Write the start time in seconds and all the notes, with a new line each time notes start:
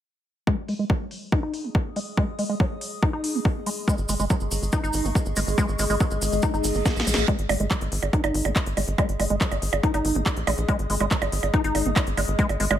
0.47 G#3, kick
0.52 G#4
0.68 G#3, open hi-hat
0.79 G#3
0.90 F#3 D#5, kick
1.11 D#6, open hi-hat
1.32 D#4, kick
1.43 D#4
1.54 open hi-hat
1.64 G#3
1.75 kick
1.96 G#3, open hi-hat
2.17 G#3, kick
2.39 G#3, open hi-hat
2.49 G#3
2.60 F#3, kick
2.81 open hi-hat
3.03 D#4, kick
3.13 D#4
3.24 open hi-hat
3.35 G#3
3.45 kick
3.66 G#3, open hi-hat
3.88 G#3 C#6, kick, cabasa
3.98 G#1, cabasa
4.09 G#1 G#3, open hi-hat, cabasa
4.19 G#1 G#3, cabasa
4.30 F#3, kick, cabasa
4.40 G#1, cabasa
4.51 G#1, open hi-hat, cabasa
4.62 G#1, cabasa
4.72 D#4, kick, cabasa
4.83 G#1 D#4, cabasa
4.93 G#1, open hi-hat, cabasa
5.05 G#1 G#3, cabasa
5.15 kick, cabasa
5.25 G#1, cabasa
5.36 G#1 G#3, open hi-hat, cabasa
5.47 G#1, cabasa
5.58 G#3, kick, cabasa
5.68 G#1, cabasa
5.79 G#1 G#3, open hi-hat, cabasa
5.90 G#1 G#3, cabasa
6.00 F#3, kick, cabasa
6.11 G#1, cabasa
6.22 G#1, open hi-hat, cabasa
6.32 G#1, cabasa
6.42 D#4, kick, reverse cymbal, cabasa
6.54 G#1 D#4, cabasa
6.64 G#1, open hi-hat, cabasa
6.74 G#1 G#3, cabasa
6.86 kick, snare, cabasa
6.96 A#1, snare, cabasa
7.07 A#1 G#3, open hi-hat, cabasa
7.14 A#1, snare, cabasa
7.28 G#3, kick, closed hi-hat, percussion blips
7.39 G#1, closed hi-hat
7.49 G#1 G#3, open hi-hat, percussion blips
7.60 G#1 G#3, closed hi-hat
7.71 F#3, kick, clap, closed hi-hat, percussion blips
7.81 G#1, closed hi-hat
7.92 G#1, open hi-hat
8.03 G#1 D#6, closed hi-hat, percussion blips
8.13 D#4, kick, closed hi-hat
8.24 G#1 D#4, closed hi-hat, percussion blips
8.34 G#1, open hi-hat
8.45 G#1 G#3, closed hi-hat, percussion blips
8.56 kick, clap, closed hi-hat
8.66 G#1, closed hi-hat
8.77 G#1 G#3, open hi-hat, percussion blips
8.88 G#1, closed hi-hat
8.98 G#3, kick, closed hi-hat, percussion blips
9.09 G#1, closed hi-hat
9.20 G#1 G#3, open hi-hat, percussion blips
9.30 G#1 G#3, closed hi-hat
9.41 F#3, kick, clap, closed hi-hat
9.51 G#1, closed hi-hat, percussion blips
9.62 G#1, open hi-hat
9.73 G#1, closed hi-hat, percussion blips
9.83 D#4, kick, closed hi-hat
9.94 G#1 D#4, closed hi-hat, percussion blips
10.05 G#1, open hi-hat
10.15 G#1 G#3, closed hi-hat
10.26 kick, clap, closed hi-hat, percussion blips
10.37 A#1, closed hi-hat
10.47 A#1 G#3, open hi-hat, percussion blips
10.58 A#1, closed hi-hat
10.68 G#3, kick, closed hi-hat, percussion blips
10.79 G#1, closed hi-hat
10.90 G#1 G#3, open hi-hat
11.00 G#1 G#3, closed hi-hat, percussion blips
11.11 F#3, kick, clap, closed hi-hat
11.22 G#1, closed hi-hat, percussion blips
11.32 G#1, open hi-hat
11.43 G#1, closed hi-hat, percussion blips
11.54 D#4, kick, closed hi-hat
11.64 G#1 D#4, closed hi-hat
11.75 G#1, open hi-hat, percussion blips
11.86 G#1 G#3, closed hi-hat
11.96 kick, clap, closed hi-hat, percussion blips
12.07 G#1, closed hi-hat
12.17 G#1 G#3, open hi-hat, percussion blips
12.28 G#1, closed hi-hat
12.39 G#3, kick, closed hi-hat
12.49 G#1, closed hi-hat, percussion blips
12.60 G#1 G#3, open hi-hat
12.71 G#1 G#3, closed hi-hat, percussion blips